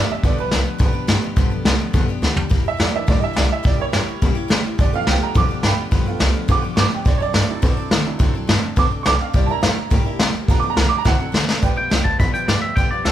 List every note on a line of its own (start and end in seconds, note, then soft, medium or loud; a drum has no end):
0.00 0.10 D5 loud
0.08 0.23 F3 soft
0.08 0.23 B3 medium
0.08 0.23 D4 medium
0.08 0.23 G4 medium
0.08 0.24 E5 medium
0.08 muted upright bass stroke medium
0.23 0.33 G1 medium
0.23 0.38 G2 medium
0.23 0.38 D3 medium
0.23 0.38 F3 medium
0.23 0.43 F3 medium
0.23 0.43 A3 soft
0.23 0.38 B3 medium
0.23 0.43 B3 medium
0.23 0.38 D4 medium
0.23 0.37 G4 medium
0.23 0.39 D5 medium
0.23 kick loud
0.23 open hi-hat medium
0.38 0.47 B1 loud
0.38 0.50 F3 medium
0.38 0.51 B3 medium
0.38 0.51 D4 soft
0.38 0.52 G4 medium
0.38 1.22 B4 loud
0.51 0.61 C2 loud
0.51 0.66 F3 medium
0.51 0.66 B3 medium
0.51 0.65 D4 medium
0.51 0.64 G4 medium
0.51 snare loud
0.51 open hi-hat soft
0.65 0.78 F3 soft
0.65 0.78 B3 soft
0.65 0.79 D4 medium
0.65 0.79 G4 medium
0.65 muted upright bass stroke medium
0.78 0.89 E2 loud
0.78 0.94 G2 loud
0.78 0.94 D3 medium
0.78 0.94 F3 loud
0.78 0.93 B3 loud
0.78 0.93 D4 loud
0.78 0.91 G4 loud
0.78 kick loud
0.78 open hi-hat medium
0.93 1.06 F3 medium
0.93 1.07 B3 medium
0.93 1.08 D4 medium
0.93 1.08 G4 medium
0.93 muted upright bass stroke medium
1.07 1.18 G2 loud
1.07 1.22 F3 medium
1.07 1.22 B3 medium
1.07 1.22 D4 medium
1.07 1.21 G4 medium
1.07 snare loud
1.22 1.36 F3 medium
1.22 1.37 B3 medium
1.22 1.37 D4 medium
1.22 1.37 G4 medium
1.22 muted upright bass stroke medium
1.36 1.46 G1 loud
1.36 1.51 G2 loud
1.36 1.51 D3 loud
1.36 1.92 F3 medium
1.36 1.51 F3 medium
1.36 1.93 A3 medium
1.36 1.93 B3 medium
1.36 1.51 B3 loud
1.36 1.51 D4 medium
1.36 1.49 G4 loud
1.36 kick loud
1.36 open hi-hat medium
1.50 1.60 B1 medium
1.50 1.64 F3 medium
1.50 1.65 B3 medium
1.50 1.66 D4 medium
1.50 1.65 G4 medium
1.65 1.74 C2 loud
1.65 1.80 F3 medium
1.65 1.80 B3 medium
1.65 1.79 D4 medium
1.65 1.78 G4 medium
1.65 snare loud
1.65 open hi-hat medium
1.80 1.93 F3 medium
1.80 1.93 B3 medium
1.80 1.93 D4 medium
1.80 1.94 G4 medium
1.93 2.03 E2 medium
1.93 2.08 G2 medium
1.93 2.08 D3 loud
1.93 2.07 F3 medium
1.93 2.08 F3 loud
1.93 2.07 A3 soft
1.93 2.08 B3 loud
1.93 2.07 B3 medium
1.93 2.08 D4 loud
1.93 2.07 G4 loud
1.93 kick loud
1.93 open hi-hat medium
2.08 2.21 F3 medium
2.08 2.22 B3 medium
2.08 2.23 D4 medium
2.08 2.22 G4 medium
2.08 muted upright bass stroke medium
2.22 2.32 D2 loud
2.22 2.37 F3 medium
2.22 2.36 B3 medium
2.22 2.35 D4 medium
2.22 2.34 G4 medium
2.22 snare medium
2.35 2.49 F3 medium
2.35 2.50 B3 medium
2.35 2.50 D4 medium
2.35 2.50 G4 medium
2.35 floor tom medium
2.49 2.60 C2 loud
2.49 2.64 C3 medium
2.49 2.65 G3 loud
2.49 2.65 A#3 medium
2.49 2.64 E4 medium
2.49 2.63 G4 medium
2.49 kick loud
2.49 open hi-hat medium
2.64 2.74 E2 medium
2.64 2.77 A#3 soft
2.64 2.78 E4 medium
2.64 2.79 G4 medium
2.68 2.80 E5 loud
2.77 2.89 F2 loud
2.77 2.93 G3 medium
2.77 2.93 A#3 medium
2.77 2.92 E4 medium
2.77 2.91 G4 medium
2.77 snare loud
2.81 2.94 D5 medium
2.92 3.34 E3 medium
2.92 3.34 A#3 medium
2.92 3.06 A#3 soft
2.92 3.34 D4 medium
2.92 3.07 E4 medium
2.92 3.07 G4 medium
2.92 3.09 E5 medium
2.92 muted upright bass stroke medium
3.07 3.17 A2 loud
3.07 3.22 C3 medium
3.07 3.22 G3 medium
3.07 3.21 A#3 medium
3.07 3.20 E4 medium
3.07 3.19 G4 medium
3.07 3.23 D5 loud
3.07 kick loud
3.07 open hi-hat medium
3.19 3.33 A#3 medium
3.19 3.35 E4 medium
3.19 3.35 G4 medium
3.19 3.21 D#5 medium
3.19 muted upright bass stroke medium
3.24 3.37 E5 loud
3.33 3.46 C2 loud
3.33 3.49 G3 medium
3.33 3.50 A#3 medium
3.33 3.49 E4 medium
3.33 3.48 G4 medium
3.33 snare loud
3.33 open hi-hat medium
3.38 3.51 D5 medium
3.49 3.63 A#3 soft
3.49 3.63 E4 medium
3.49 3.64 G4 medium
3.49 3.65 E5 medium
3.63 3.74 C#2 loud
3.63 3.78 C#3 medium
3.63 3.78 G3 medium
3.63 3.79 A#3 medium
3.63 3.78 E4 medium
3.63 3.77 G4 medium
3.63 3.80 D5 medium
3.63 kick loud
3.63 open hi-hat medium
3.78 3.89 E2 medium
3.78 4.74 G3 medium
3.78 4.75 A#3 medium
3.78 3.92 A#3 soft
3.78 3.93 E4 soft
3.78 4.75 E4 medium
3.78 3.93 G4 medium
3.78 4.63 C#5 loud
3.92 4.03 F#2 loud
3.92 4.07 G3 medium
3.92 4.08 A#3 medium
3.92 4.07 E4 medium
3.92 4.06 G4 medium
3.92 snare loud
3.92 open hi-hat soft
4.07 4.21 A#3 soft
4.07 4.21 E4 medium
4.07 4.21 G4 medium
4.07 muted upright bass stroke medium
4.22 4.31 A#2 loud
4.22 4.36 C#3 loud
4.22 4.36 G3 loud
4.22 4.36 A#3 medium
4.22 4.35 E4 loud
4.22 4.34 G4 loud
4.22 kick loud
4.22 open hi-hat soft
4.35 4.48 A#3 medium
4.35 4.49 E4 medium
4.35 4.49 G4 medium
4.35 muted upright bass stroke medium
4.48 4.60 C#3 loud
4.48 4.63 G3 medium
4.48 4.64 A#3 medium
4.48 4.64 E4 medium
4.48 4.62 G4 medium
4.48 snare loud
4.48 open hi-hat medium
4.64 4.79 A#3 soft
4.64 4.79 E4 medium
4.64 4.78 G4 medium
4.64 muted upright bass stroke medium
4.78 4.88 G1 loud
4.78 4.93 G2 medium
4.78 4.93 D3 medium
4.78 4.93 F3 medium
4.78 4.93 B3 medium
4.78 4.93 D4 medium
4.78 4.92 G4 medium
4.78 4.93 D5 loud
4.78 kick loud
4.78 open hi-hat medium
4.93 5.02 B1 loud
4.93 5.06 F3 medium
4.93 6.03 A3 medium
4.93 6.03 B3 soft
4.93 5.06 B3 medium
4.93 5.07 D4 medium
4.93 6.03 F4 medium
4.93 5.07 G4 medium
4.93 5.08 F5 loud
5.07 5.16 C2 loud
5.07 5.21 F3 medium
5.07 5.22 B3 medium
5.07 5.21 D4 medium
5.07 5.19 G4 medium
5.07 5.22 G5 loud
5.07 snare loud
5.07 open hi-hat medium
5.21 5.34 F3 soft
5.21 5.34 B3 soft
5.21 5.35 D4 medium
5.21 5.35 G4 medium
5.21 5.36 A#5 loud
5.21 muted upright bass stroke medium
5.35 5.45 E2 loud
5.35 5.49 G2 medium
5.35 5.50 D3 loud
5.35 5.50 F3 loud
5.35 5.50 B3 medium
5.35 5.48 D4 loud
5.35 5.47 G4 medium
5.35 5.64 D6 loud
5.35 kick loud
5.35 open hi-hat medium
5.49 5.62 F3 soft
5.49 5.62 B3 medium
5.49 5.64 D4 medium
5.49 5.63 G4 medium
5.49 muted upright bass stroke medium
5.63 5.73 G2 loud
5.63 5.78 F3 medium
5.63 5.78 B3 medium
5.63 5.77 D4 medium
5.63 5.77 G4 medium
5.63 6.18 G5 medium
5.63 6.21 B5 loud
5.63 snare loud
5.63 open hi-hat medium
5.78 5.91 F3 soft
5.78 5.91 B3 soft
5.78 5.92 D4 medium
5.78 5.92 G4 medium
5.91 6.01 G1 loud
5.91 6.06 G2 medium
5.91 6.06 D3 medium
5.91 6.06 F3 medium
5.91 6.07 B3 medium
5.91 6.06 D4 medium
5.91 6.05 G4 medium
5.91 kick loud
5.91 open hi-hat medium
6.06 6.15 B1 medium
6.06 6.18 F3 medium
6.06 6.48 A3 medium
6.06 6.48 B3 medium
6.06 6.20 B3 medium
6.06 6.20 D4 medium
6.06 6.48 F4 medium
6.06 6.21 G4 medium
6.20 6.30 C2 loud
6.20 6.35 F3 medium
6.20 6.35 B3 medium
6.20 6.34 D4 medium
6.20 6.33 G4 medium
6.20 snare loud
6.20 open hi-hat medium
6.34 6.47 F3 soft
6.34 6.48 B3 medium
6.34 6.48 D4 medium
6.34 6.49 G4 medium
6.34 muted upright bass stroke medium
6.48 6.58 E2 loud
6.48 6.63 G2 medium
6.48 6.63 D3 medium
6.48 6.63 F3 loud
6.48 6.62 A3 medium
6.48 6.63 B3 loud
6.48 6.62 B3 soft
6.48 6.62 D4 medium
6.48 6.62 F4 medium
6.48 6.61 G4 loud
6.48 6.64 D6 loud
6.48 kick loud
6.48 open hi-hat medium
6.62 6.75 F3 medium
6.62 6.76 B3 medium
6.62 6.77 D4 medium
6.62 6.77 G4 medium
6.62 muted upright bass stroke medium
6.76 6.87 G2 loud
6.76 6.91 F3 medium
6.76 6.92 B3 medium
6.76 6.91 D4 medium
6.76 6.90 G4 medium
6.76 6.78 C#6 medium
6.76 snare loud
6.81 6.93 D6 medium
6.91 7.05 F3 soft
6.91 7.06 B3 soft
6.91 7.05 D4 medium
6.91 7.06 G4 medium
6.91 7.07 G5 medium
6.91 muted upright bass stroke medium
7.05 7.15 D2 loud
7.05 7.20 D3 medium
7.05 7.20 F#3 medium
7.05 7.21 C4 medium
7.05 7.20 D4 medium
7.05 7.19 A4 loud
7.05 7.21 D5 loud
7.05 kick loud
7.05 open hi-hat medium
7.18 7.30 F#2 medium
7.18 7.34 D4 soft
7.18 7.35 A4 medium
7.18 7.20 C#5 medium
7.22 7.33 C4 soft
7.22 8.04 D5 loud
7.33 7.44 G2 loud
7.33 7.48 F#3 medium
7.33 7.49 C4 medium
7.33 7.48 D4 medium
7.33 7.46 A4 medium
7.33 snare loud
7.33 open hi-hat medium
7.48 7.89 F#3 medium
7.48 7.90 C4 medium
7.48 7.61 C4 soft
7.48 7.62 D4 medium
7.48 7.90 E4 medium
7.48 7.62 A4 medium
7.48 muted upright bass stroke medium
7.62 7.72 B2 loud
7.62 7.77 D3 loud
7.62 7.77 F#3 loud
7.62 7.77 C4 loud
7.62 7.77 D4 loud
7.62 7.76 A4 loud
7.62 kick loud
7.62 open hi-hat medium
7.77 7.91 C4 medium
7.77 7.92 D4 medium
7.77 7.91 A4 medium
7.77 muted upright bass stroke medium
7.91 8.01 D3 loud
7.91 8.06 F#3 medium
7.91 8.06 C4 medium
7.91 8.05 D4 medium
7.91 8.04 A4 medium
7.91 snare loud
8.05 8.18 F#3 soft
8.05 8.18 C4 soft
8.05 8.19 C4 soft
8.05 8.19 D4 medium
8.05 8.19 E4 medium
8.05 8.19 A4 medium
8.05 muted upright bass stroke medium
8.19 8.29 D2 loud
8.19 8.34 D3 loud
8.19 8.60 F#3 medium
8.19 8.34 F#3 medium
8.19 8.61 C4 medium
8.19 8.35 C4 medium
8.19 8.34 D4 loud
8.19 8.61 E4 medium
8.19 8.33 A4 loud
8.19 kick loud
8.19 open hi-hat medium
8.33 8.43 F#2 loud
8.33 8.48 C4 medium
8.33 8.48 D4 medium
8.33 8.48 A4 medium
8.47 8.58 G2 loud
8.47 8.62 F#3 medium
8.47 8.63 C4 medium
8.47 8.61 D4 medium
8.47 8.60 A4 medium
8.47 snare loud
8.47 open hi-hat medium
8.61 8.76 C4 soft
8.61 8.77 D4 medium
8.61 8.76 A4 medium
8.61 muted upright bass stroke medium
8.76 8.86 B2 loud
8.76 8.91 D3 loud
8.76 8.91 F#3 medium
8.76 8.91 C4 medium
8.76 8.90 D4 loud
8.76 8.89 A4 loud
8.76 8.92 D6 loud
8.76 kick loud
8.76 open hi-hat medium
8.90 9.04 C4 soft
8.90 9.05 D4 medium
8.90 9.05 A4 medium
8.90 muted upright bass stroke medium
9.03 9.15 B1 loud
9.03 9.19 F#3 medium
9.03 9.20 C4 medium
9.03 9.20 D4 medium
9.03 9.18 A4 medium
9.03 9.05 C#6 medium
9.03 snare loud
9.03 open hi-hat medium
9.08 9.20 D6 loud
9.19 9.34 C4 soft
9.19 9.34 D4 medium
9.19 9.34 A4 medium
9.19 9.34 F5 medium
9.19 muted upright bass stroke medium
9.33 9.43 C2 loud
9.33 9.48 C3 medium
9.33 9.48 G3 medium
9.33 9.48 A#3 medium
9.33 9.48 E4 medium
9.33 9.47 G4 medium
9.33 9.49 D5 medium
9.33 kick loud
9.33 open hi-hat medium
9.46 9.57 E2 medium
9.46 9.89 A#3 medium
9.46 9.62 A#3 soft
9.46 9.89 D4 medium
9.46 9.62 E4 medium
9.46 9.90 E4 medium
9.46 9.62 G4 medium
9.46 9.48 A5 medium
9.51 10.33 A#5 loud
9.62 9.72 F2 loud
9.62 9.76 G3 medium
9.62 9.77 A#3 medium
9.62 9.76 E4 medium
9.62 9.75 G4 medium
9.62 snare loud
9.62 open hi-hat medium
9.76 9.90 A#3 soft
9.76 9.91 E4 medium
9.76 9.91 G4 medium
9.76 muted upright bass stroke medium
9.90 10.00 A2 loud
9.90 10.05 C3 medium
9.90 10.05 G3 loud
9.90 10.06 A#3 loud
9.90 10.05 E4 loud
9.90 10.04 G4 loud
9.90 kick loud
9.90 open hi-hat medium
10.05 10.18 A#3 medium
10.05 10.19 A#3 medium
10.05 10.18 D4 soft
10.05 10.20 E4 medium
10.05 10.19 E4 medium
10.05 10.19 G4 medium
10.05 muted upright bass stroke medium
10.19 10.29 C3 loud
10.19 10.34 G3 medium
10.19 10.34 A#3 medium
10.19 10.35 E4 medium
10.19 10.33 G4 medium
10.19 snare loud
10.19 open hi-hat medium
10.34 10.50 A#3 medium
10.34 10.49 E4 medium
10.34 10.48 G4 medium
10.34 muted upright bass stroke medium
10.48 10.58 G1 loud
10.48 10.63 G2 loud
10.48 10.63 D3 medium
10.48 10.63 F3 medium
10.48 10.67 A3 medium
10.48 10.67 B3 medium
10.48 10.62 B3 medium
10.48 10.62 D4 medium
10.48 10.68 F4 medium
10.48 10.61 G4 medium
10.48 10.58 A#5 medium
10.48 kick loud
10.48 open hi-hat medium
10.60 10.72 B1 loud
10.60 10.76 B3 medium
10.60 10.77 D4 soft
10.60 10.77 G4 medium
10.60 10.68 D6 medium
10.65 10.75 F3 medium
10.70 10.77 A#5 loud
10.76 10.85 C2 loud
10.76 10.91 F3 medium
10.76 10.91 B3 medium
10.76 10.90 D4 medium
10.76 10.89 G4 medium
10.76 10.87 A#5 loud
10.76 snare loud
10.76 open hi-hat medium
10.89 11.04 F3 soft
10.89 11.05 B3 medium
10.89 11.04 D4 medium
10.89 11.05 G4 medium
10.89 10.97 D6 loud
10.98 11.06 A#5 loud
11.05 11.15 D2 loud
11.05 11.19 D3 medium
11.05 11.19 F#3 medium
11.05 11.24 F#3 medium
11.05 11.24 C4 medium
11.05 11.19 C4 medium
11.05 11.19 D4 medium
11.05 11.24 E4 medium
11.05 11.17 A4 loud
11.05 11.34 F#5 loud
11.05 kick loud
11.05 snare medium
11.18 11.32 C4 soft
11.18 11.33 D4 medium
11.18 11.33 A4 medium
11.32 11.43 D3 loud
11.32 11.47 F#3 medium
11.32 11.48 C4 medium
11.32 11.47 D4 medium
11.32 11.46 A4 medium
11.32 snare medium
11.47 11.62 C4 medium
11.47 11.62 D4 medium
11.47 11.62 A4 medium
11.47 muted upright bass stroke medium
11.47 snare loud
11.62 11.72 G1 medium
11.62 11.76 G2 medium
11.62 11.76 D3 medium
11.62 11.77 F3 medium
11.62 11.76 B3 loud
11.62 11.75 F4 loud
11.62 11.74 G4 loud
11.62 11.70 B4 loud
11.62 11.71 D5 loud
11.62 11.71 G5 loud
11.62 kick loud
11.62 closed hi-hat medium
11.76 11.86 B1 medium
11.76 11.89 F3 soft
11.76 11.90 B3 medium
11.76 11.91 F4 medium
11.76 11.90 G4 medium
11.76 11.85 B4 medium
11.76 11.85 D5 medium
11.76 12.05 G5 medium
11.76 11.86 G5 medium
11.90 12.00 C2 loud
11.90 12.05 F3 medium
11.90 12.04 B3 medium
11.90 12.03 F4 medium
11.90 12.03 G4 medium
11.90 11.99 B4 medium
11.90 11.99 D5 medium
11.90 11.99 E5 medium
11.90 snare loud
11.90 closed hi-hat medium
12.03 12.19 F3 soft
12.03 12.19 B3 soft
12.03 12.19 F4 soft
12.03 12.19 G4 soft
12.03 12.13 B4 medium
12.03 12.13 D5 medium
12.03 12.18 A5 medium
12.03 12.14 A5 medium
12.03 kick medium
12.18 12.29 E2 medium
12.18 12.34 G2 medium
12.18 12.34 D3 medium
12.18 12.34 F3 medium
12.18 12.34 B3 loud
12.18 12.34 F4 medium
12.18 12.33 G4 medium
12.18 12.27 B4 medium
12.18 12.28 D5 medium
12.18 12.28 E5 medium
12.18 12.33 B5 medium
12.18 kick loud
12.18 closed hi-hat medium
12.32 12.49 F4 medium
12.32 12.48 G4 medium
12.32 12.41 B4 medium
12.32 12.42 D5 medium
12.32 12.42 G5 medium
12.32 12.47 G5 medium
12.32 muted upright bass stroke medium
12.32 closed hi-hat medium
12.36 12.47 F3 soft
12.36 12.49 B3 soft
12.46 12.57 G2 loud
12.46 12.62 F3 medium
12.46 12.55 B4 medium
12.46 12.56 D5 medium
12.46 12.61 D5 medium
12.46 12.56 G5 medium
12.46 snare loud
12.46 closed hi-hat medium
12.50 12.62 B3 medium
12.50 12.61 F4 medium
12.50 12.61 G4 medium
12.60 12.77 B3 soft
12.60 12.77 F4 soft
12.60 12.76 G4 soft
12.60 12.70 B4 medium
12.60 12.70 D5 medium
12.60 12.76 E5 medium
12.60 12.71 G5 medium
12.64 12.76 F3 soft
12.75 12.86 G1 loud
12.75 12.91 G2 medium
12.75 12.91 D3 medium
12.75 12.91 F3 medium
12.75 12.91 B3 medium
12.75 12.90 F4 medium
12.75 12.90 G4 medium
12.75 12.84 B4 medium
12.75 12.85 D5 medium
12.75 12.90 G5 medium
12.75 12.85 G5 loud
12.75 kick loud
12.75 closed hi-hat medium
12.90 13.00 B1 medium
12.90 13.04 F3 soft
12.90 13.05 B3 soft
12.90 13.05 F4 medium
12.90 13.05 G4 soft
12.90 12.99 B4 medium
12.90 12.99 D5 medium
12.90 13.05 D5 medium
12.90 13.00 F5 medium
13.04 13.12 C2 loud
13.04 13.12 F3 medium
13.04 13.12 B3 medium
13.04 13.12 F4 medium
13.04 13.12 G4 medium
13.04 13.12 A4 medium
13.04 13.12 B4 medium
13.04 13.12 D5 medium
13.04 13.12 G5 medium
13.04 snare loud
13.04 closed hi-hat medium